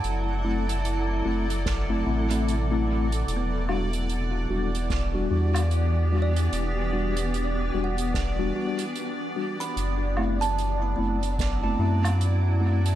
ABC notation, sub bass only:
X:1
M:4/4
L:1/8
Q:"Swing 16ths" 1/4=74
K:Em
V:1 name="Sub bass" clef=bass
F,,,3 F,,,2 A,,,3 | E,,,3 E,,,2 E,,3 | E,,,3 E,,,2 z3 | F,,,3 F,,,2 F,,3 |]